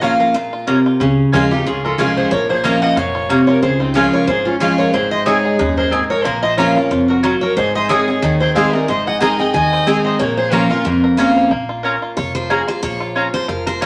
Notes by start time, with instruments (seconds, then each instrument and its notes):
Already playing: upright bass A#1, steel-string acoustic guitar A#2, five-string banjo F3
0.01 steel-string acoustic guitar F3 A#3 C#4 F4 F5, mandolin C#4 F4 C#5 A#5, five-string banjo F4
0.20 five-string banjo A#4, steel-string acoustic guitar F5
0.34 steel-string acoustic guitar A#2, five-string banjo F4
0.53 five-string banjo F4
0.67 steel-string acoustic guitar C3, mandolin C#4 F4 C#5 A#5, five-string banjo A#4
0.86 five-string banjo F4
1.00 upright bass C#2, steel-string acoustic guitar C#3, five-string banjo C#4
1.32 upright bass D#2, steel-string acoustic guitar F3 G#3 C#4 F4 A#4, mandolin C#4 F4 C#5 G#5, fiddle F4, five-string banjo A#4
1.51 steel-string acoustic guitar C#4 F4 G4, fiddle D#4, five-string banjo F4
1.66 upright bass C#2, steel-string acoustic guitar G#2 G#4, five-string banjo C#4, fiddle F4
1.84 fiddle F4, steel-string acoustic guitar A4, five-string banjo A#4
1.98 upright bass C2, steel-string acoustic guitar F3 G#3 C#4 F4 A#4, mandolin C#4 F4 C#5 G#5, fiddle F4, five-string banjo F4
2.16 five-string banjo F3, fiddle G#4, steel-string acoustic guitar C5
2.31 upright bass A#1, steel-string acoustic guitar A#2 C#5, five-string banjo F4, fiddle A#4
2.49 five-string banjo A#3, fiddle G#4, steel-string acoustic guitar C5
2.64 steel-string acoustic guitar F3 A#3 C#4 F4 D#5, mandolin C#4 F4 C#5 A#5, five-string banjo F4, fiddle A#4
2.81 five-string banjo A#4, fiddle D#5, steel-string acoustic guitar F#5
2.96 upright bass F1, steel-string acoustic guitar A#2 F5, five-string banjo F4, fiddle C#5
3.15 five-string banjo F4
3.29 steel-string acoustic guitar C3, five-string banjo A#3, mandolin C#4 F4 C#5 A#5
3.47 five-string banjo F4, fiddle A#4, steel-string acoustic guitar C#5
3.62 upright bass C#2, steel-string acoustic guitar C#3 C5, five-string banjo F4, fiddle G#4
3.80 fiddle C4, steel-string acoustic guitar D#4, five-string banjo F4
3.94 steel-string acoustic guitar F3 G#3 C#4 F4 G#4, mandolin C#4 F4 C#5 G#5, fiddle F4, five-string banjo A#4
4.13 five-string banjo F4, fiddle A#4, steel-string acoustic guitar C#5
4.27 upright bass G#1, steel-string acoustic guitar G#2 C5, five-string banjo F4, fiddle G#4
4.45 fiddle C#4, five-string banjo C#4, steel-string acoustic guitar F4
4.60 steel-string acoustic guitar F3 G#3 C#4 F4, mandolin C#4 F4 C#5 G#5, five-string banjo F4
4.78 five-string banjo F4, fiddle A#4, steel-string acoustic guitar C#5
4.93 upright bass G#1, steel-string acoustic guitar G#2 C5, five-string banjo C4, fiddle G#4
5.11 fiddle C5, steel-string acoustic guitar D#5
5.26 steel-string acoustic guitar G#3 D#4 G#4 C#5, five-string banjo G#3, mandolin C4 G#4 D#5 G#5, fiddle G#4
5.45 five-string banjo G#4
5.59 upright bass D#2, steel-string acoustic guitar F#2, five-string banjo D#4
5.77 fiddle G#4, five-string banjo A#4, steel-string acoustic guitar C5
5.91 steel-string acoustic guitar G#2, mandolin C4 G#4 D#5 G#5, five-string banjo D#4
6.10 five-string banjo A#4, fiddle A#4, steel-string acoustic guitar C#5
6.25 upright bass A#1, steel-string acoustic guitar A#2 A#4, five-string banjo A#3, fiddle F4
6.43 five-string banjo F4, fiddle C5, steel-string acoustic guitar D#5
6.57 steel-string acoustic guitar F3 A#3 C#4 F4 C#5, five-string banjo F3, mandolin C#4 F4 C#5 A#5, fiddle A#4
6.76 steel-string acoustic guitar C#4 F4, five-string banjo F4
6.91 upright bass F1, steel-string acoustic guitar F2, five-string banjo F4
7.08 fiddle F#4, steel-string acoustic guitar A#4, five-string banjo A#4
7.23 steel-string acoustic guitar F#3, mandolin C#4 F4 C#5 A#5, five-string banjo F4
7.41 five-string banjo A#4, fiddle A#4, steel-string acoustic guitar C#5
7.57 upright bass G#1, steel-string acoustic guitar G#2 C5, five-string banjo D#4, fiddle G#4
7.75 five-string banjo G#4, fiddle C5, steel-string acoustic guitar D#5
7.89 steel-string acoustic guitar G#3 C4 D#4 G#4 C#5, mandolin C4 G#4 D#5 G#5, fiddle G#4, five-string banjo A#4
8.08 steel-string acoustic guitar D#4 G#4, five-string banjo G#4
8.22 upright bass D#2, steel-string acoustic guitar D#3, five-string banjo D#4
8.40 five-string banjo C4, fiddle G#4, steel-string acoustic guitar C5
8.55 steel-string acoustic guitar G#3 C4 D#4 G#4 F5, mandolin C4 G#4 D#5 G#5, five-string banjo D#4, fiddle C5
8.73 steel-string acoustic guitar D#4 G#4 D5, five-string banjo G#4, fiddle A#4
8.88 upright bass G#1, steel-string acoustic guitar G#2 D#5, five-string banjo D#4, fiddle C5
9.06 five-string banjo G#4, fiddle D#5, steel-string acoustic guitar F#5
9.20 steel-string acoustic guitar G#3 C4 D#4 G#4 A#5, mandolin C4 G#4 D#5 G#5, five-string banjo A#4, fiddle D#5
9.38 steel-string acoustic guitar D#4 G#4 G5, five-string banjo G#4, fiddle D#5
9.54 upright bass D#2, steel-string acoustic guitar D#3 G#5, five-string banjo D#4, fiddle D#5
9.73 five-string banjo C4
9.87 steel-string acoustic guitar G#3 C4 D#4 G#4, mandolin C4 G#4 D#5 G#5, five-string banjo D#4
10.04 five-string banjo G#4, fiddle C5, steel-string acoustic guitar D#5
10.19 upright bass A#1, steel-string acoustic guitar A#2 C#5, five-string banjo A#3, fiddle A#4
10.37 fiddle G#4, steel-string acoustic guitar C5
10.52 steel-string acoustic guitar F3 A#3 C#4 F4 A#4, mandolin C#4 F4 C#5 A#5, fiddle F4, five-string banjo A#4
10.70 steel-string acoustic guitar C#4 F4 A#4, fiddle F4, five-string banjo F4
10.85 upright bass F1, steel-string acoustic guitar F2, five-string banjo A#3
11.04 five-string banjo A#4
11.17 steel-string acoustic guitar F3 A#3 C#4 F4, mandolin C#4 F4 C#5 A#5, five-string banjo F4
11.37 five-string banjo F3
11.51 upright bass A#1, five-string banjo A#3
11.69 five-string banjo F4
11.83 mandolin C#4 F4 C#5 A#5, five-string banjo A#4
12.02 five-string banjo F4
12.17 upright bass F1, five-string banjo F4, steel-string acoustic guitar C#5
12.35 five-string banjo F3, steel-string acoustic guitar C5
12.50 five-string banjo A#3, mandolin C#4 F4 C#5 A#5, steel-string acoustic guitar G#4
12.68 five-string banjo F4, steel-string acoustic guitar C5
12.83 upright bass A#1, five-string banjo A#3, steel-string acoustic guitar C#5
13.00 five-string banjo F4
13.16 mandolin C#4 F4 C#5 A#5, five-string banjo F4
13.34 five-string banjo F3, steel-string acoustic guitar C5
13.48 upright bass F1, five-string banjo F4, steel-string acoustic guitar A#4
13.67 five-string banjo A#4, steel-string acoustic guitar C5
13.81 five-string banjo A#3, mandolin C#4 F4 C#5 A#5, steel-string acoustic guitar C#5